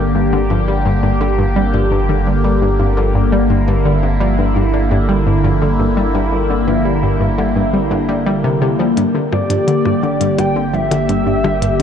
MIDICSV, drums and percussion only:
0, 0, Header, 1, 3, 480
1, 0, Start_track
1, 0, Tempo, 705882
1, 341, Time_signature, 4, 2, 24, 8
1, 8039, End_track
2, 0, Start_track
2, 0, Title_t, "Percussion blips"
2, 6341, Note_on_c, 9, 61, 46
2, 6409, Note_off_c, 9, 61, 0
2, 6701, Note_on_c, 9, 61, 41
2, 6769, Note_off_c, 9, 61, 0
2, 7062, Note_on_c, 9, 61, 47
2, 7130, Note_off_c, 9, 61, 0
2, 7422, Note_on_c, 9, 61, 45
2, 7490, Note_off_c, 9, 61, 0
2, 7783, Note_on_c, 9, 61, 45
2, 7851, Note_off_c, 9, 61, 0
2, 8039, End_track
3, 0, Start_track
3, 0, Title_t, "Drums"
3, 6101, Note_on_c, 9, 42, 52
3, 6169, Note_off_c, 9, 42, 0
3, 6461, Note_on_c, 9, 42, 67
3, 6529, Note_off_c, 9, 42, 0
3, 6581, Note_on_c, 9, 42, 50
3, 6649, Note_off_c, 9, 42, 0
3, 6942, Note_on_c, 9, 42, 65
3, 7010, Note_off_c, 9, 42, 0
3, 7062, Note_on_c, 9, 42, 53
3, 7130, Note_off_c, 9, 42, 0
3, 7422, Note_on_c, 9, 42, 66
3, 7490, Note_off_c, 9, 42, 0
3, 7542, Note_on_c, 9, 42, 49
3, 7610, Note_off_c, 9, 42, 0
3, 7903, Note_on_c, 9, 42, 66
3, 7971, Note_off_c, 9, 42, 0
3, 8039, End_track
0, 0, End_of_file